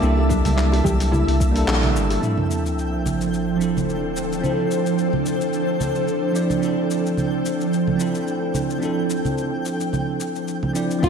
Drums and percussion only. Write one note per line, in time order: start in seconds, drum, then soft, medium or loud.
0.02 shaker soft
0.18 high bongo medium
0.30 kick medium
0.30 high conga medium
0.30 shaker medium
0.45 open hi-hat medium
0.45 low conga medium
0.45 shaker soft
0.58 clap medium
0.58 shaker soft
0.72 open hi-hat soft
0.72 high bongo medium
0.84 kick medium
0.84 high conga loud
0.84 low conga medium
0.84 shaker medium
1.00 open hi-hat medium
1.00 shaker soft
1.13 high bongo soft
1.13 low conga medium
1.13 shaker soft
1.28 open hi-hat soft
1.40 kick medium
1.40 shaker medium
1.56 open hi-hat medium
1.56 shaker soft
1.68 clap loud
1.68 high bongo medium
1.68 shaker soft
1.83 open hi-hat soft
1.83 low conga medium
1.96 shaker medium
2.10 open hi-hat medium
2.10 high bongo medium
2.10 shaker soft
2.23 shaker soft
2.38 low conga medium
2.51 shaker medium
2.66 shaker soft
2.79 shaker soft
3.06 low conga medium
3.06 shaker medium
3.21 shaker soft
3.34 shaker soft
3.61 shaker medium
3.77 low conga medium
3.77 shaker soft
3.89 shaker soft
4.16 shaker medium
4.32 shaker soft
4.44 low conga medium
4.44 shaker soft
4.71 shaker medium
4.86 shaker soft
4.98 shaker soft
5.13 low conga medium
5.26 shaker medium
5.41 shaker soft
5.53 shaker soft
5.80 low conga medium
5.80 shaker medium
5.95 shaker soft
6.08 shaker soft
6.35 shaker medium
6.50 low conga medium
6.50 shaker soft
6.63 shaker soft
6.91 shaker medium
7.06 shaker soft
7.17 low conga medium
7.17 shaker soft
7.46 shaker medium
7.61 shaker soft
7.73 shaker soft
7.87 low conga medium
8.00 shaker medium
8.15 shaker soft
8.27 shaker soft
8.54 low conga medium
8.54 shaker medium
8.70 shaker soft
8.82 shaker soft
9.10 shaker medium
9.25 low conga medium
9.25 shaker soft
9.38 shaker soft
9.65 shaker medium
9.80 shaker soft
9.93 low conga medium
9.93 shaker soft
10.20 shaker medium
10.35 shaker soft
10.48 shaker soft
10.63 low conga medium
10.75 shaker medium
10.91 shaker soft
11.03 kick loud
11.03 high bongo soft
11.03 shaker soft